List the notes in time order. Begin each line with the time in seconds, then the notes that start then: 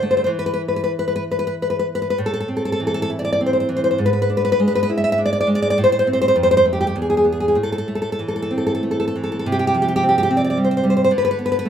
Already playing: D3
0.03 A3
0.11 C5
0.17 C5
0.24 E3 C5
0.39 B4
0.46 B4
0.54 B4
0.68 B4
0.76 B4
0.84 B4
0.99 B4
1.08 B4
1.16 B4
1.32 B4
1.39 B4
1.47 B4
1.62 B4
1.70 B4
1.79 B4
1.95 B4
2.02 B4
2.10 B4
2.18 A2
2.26 A4
2.34 A4
2.40 A4
2.48 C4
2.57 A4
2.65 A4
2.72 A4
2.80 E3
2.87 A4
2.94 A4
3.02 A4
3.10 E4
3.19 D5
3.25 D5
3.33 D5
3.41 C4
3.46 C5
3.53 C5
3.60 C5
3.69 E3
3.77 C5
3.84 C5
3.91 C5
3.98 G#2
4.06 B4
4.13 B4
4.22 B4
4.30 D4
4.37 B4
4.45 B4
4.52 B4
4.60 G#3
4.68 B4
4.75 B4
4.83 B4
4.90 E4
4.98 E5
5.04 E5
5.12 E5
5.18 D4
5.26 D5
5.33 D5
5.41 D5
5.47 G#3
5.55 D5
5.62 D5
5.70 D5
5.78 A2
5.84 C5
5.92 C5
5.99 C5
6.07 C4
6.13 C5
6.22 C5
6.28 C5
6.36 F2
6.43 C5
6.51 C5
6.57 C5
6.66 A3
6.73 G4
6.81 G4
6.87 G4
6.96 E2
7.02 G#4
7.10 G#4
7.17 G#4
7.24 B3
7.33 G#4
7.40 G#4
7.48 G#4
7.55 A2
7.63 A4
7.72 A4
7.78 A4
7.88 A3
7.95 A4
8.02 A4
8.12 A4
8.19 E3
8.28 A4
8.36 A4
8.42 A4
8.51 C4
8.58 A4
8.67 A4
8.75 A4
8.83 A3
8.91 A4
9.00 A4
9.08 A4
9.16 E3
9.24 A4
9.32 A4
9.39 A4
9.46 C3
9.52 G4
9.59 G4
9.67 G4
9.74 F3
9.82 G4
9.88 G4
9.96 G4
10.03 C4
10.09 G4
10.18 G4
10.23 G4
10.31 C4
10.37 D5
10.45 D5
10.50 D5
10.57 G3
10.65 C5
10.71 C5
10.77 C5
10.84 G3
10.90 C5
10.97 C5
11.04 C5
11.11 D3
11.18 B4
11.25 B4
11.31 B4
11.39 B3
11.46 B4
11.52 B4
11.59 B4
11.65 A3